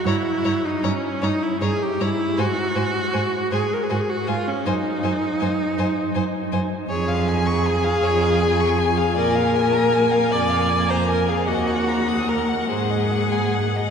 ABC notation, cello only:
X:1
M:6/8
L:1/8
Q:3/8=52
K:Db
V:1 name="Cello" clef=bass
=G,, G,, G,, G,, G,, G,, | A,, A,, A,, A,, A,, A,, | G,, G,, G,, G,, G,, G,, | F,,3 F,,3 |
B,,3 F,,3 | E,,3 A,,3 |]